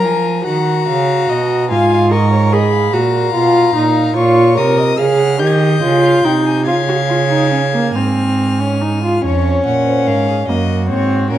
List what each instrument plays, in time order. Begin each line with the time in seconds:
Already playing: viola A#4, violin A#5
0.04 cello F3, violin G#5
0.46 cello D#3, viola F#4, violin F#5 A#5
0.88 cello C#3, violin F5
1.29 cello B2, violin D#5
1.70 cello G#2, viola F4, violin F5 G#5
1.91 violin F5
2.11 viola A#4, violin D#5 C#6
2.33 violin C#5
2.53 viola G#4, violin D#5 B5
2.74 violin F5
2.93 cello A#2, viola F#4, violin A#5
3.34 cello B2, viola F4
3.75 cello A#2, viola D#4
4.16 cello A#2, viola F4, violin C#5 C#6
4.57 cello C3, viola A#4, violin D#6
4.78 violin D#5
4.99 cello C#3, viola G#4, violin F5 F6
5.19 violin F#5
5.40 cello D#3, viola G4, violin D#5 G6
5.46 violin G#6
5.54 violin G6
5.82 cello C#3, viola F4
6.03 violin F5
6.24 cello C3, viola D#4, violin G5
6.45 violin G#5
6.67 cello C#3, viola F4, violin F5 G#6
6.88 viola F#4
7.09 viola F4
7.30 viola D#4
7.52 viola C#4
7.74 viola A#3
7.95 cello G#2, viola C4, violin G#5 F6
8.60 viola C#4
8.82 viola D#4
9.04 viola F4
9.24 cello F2, viola C#4, violin C#5
9.66 cello A#2, violin F#5
9.87 violin C5
10.07 cello G#2, violin A#4 F5
10.28 violin G#4
10.48 cello F#2, viola A#3, violin F#4 D#5
10.89 cello G#2, viola C4, violin C#5
11.30 cello A#2, viola C#4, violin A#4